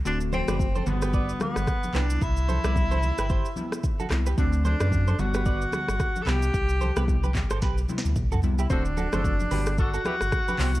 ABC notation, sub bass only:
X:1
M:4/4
L:1/16
Q:"Swing 16ths" 1/4=111
K:G
V:1 name="Sub bass" clef=bass
D,,,3 F,,,3 G,,,4 z G,,, z2 C,,2 | C,,3 C,,4 G,,,2 z4 z C,,2 | D,,3 F,,3 G,,,4 z G,,, z2 C,,2 | C,,3 C,,4 G,,, B,,,2 z D,, C,,2 C,,2 |
D,,,3 F,,,3 G,,,4 z G,,, z2 C,,2 |]